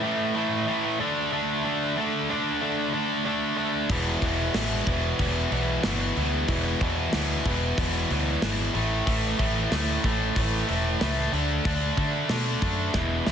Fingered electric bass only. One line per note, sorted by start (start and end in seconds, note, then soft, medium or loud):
3.89 4.15 E1 loud
4.22 4.48 E1 medium
4.54 4.80 A1 loud
4.87 5.12 E1 medium
5.19 5.45 E1 loud
5.52 5.77 B1 medium
5.85 6.10 G1 loud
6.17 6.42 D2 medium
6.48 6.74 E1 medium
6.81 7.07 E2 medium
7.14 7.39 D2 loud
7.46 7.71 E1 medium
7.78 8.03 E1 loud
8.10 8.36 D2 loud
8.42 8.68 G#1 loud
8.75 9.00 A1 medium
9.07 9.32 A1 loud
9.39 9.65 A1 medium
9.72 9.97 D2 loud
10.04 10.29 A1 loud
10.36 10.62 A1 loud
10.70 10.95 E1 medium
11.01 11.27 C#2 loud
11.33 11.58 D2 loud
11.65 11.91 D2 loud
11.98 12.23 D3 loud
12.29 12.55 B2 loud
12.62 12.88 F#2 loud
12.94 13.20 E1 loud
13.27 13.32 D2 medium